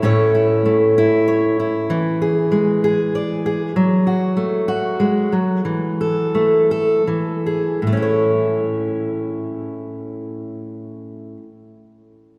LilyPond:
\new Staff \with { instrumentName = "Steel-string acoustic guitar" } { \time 3/4 \key a \major \tempo 4 = 90 << { <a cis' e' cis''>8 e'4 e'8 cis''8 e'8~ | e'8 gis'4 gis'8 d''8 gis'8 | r8 fis'4 fis'4. | r8 a'4 a'8 r8 gis'8 |
<a cis' e' cis''>2.~ | <a cis' e' cis''>2. | } \\ { a,4 a2 | e4 gis2 | fis4 a4 gis8 fis8 | e4 a4 e4 |
a,2.~ | a,2. | } >> }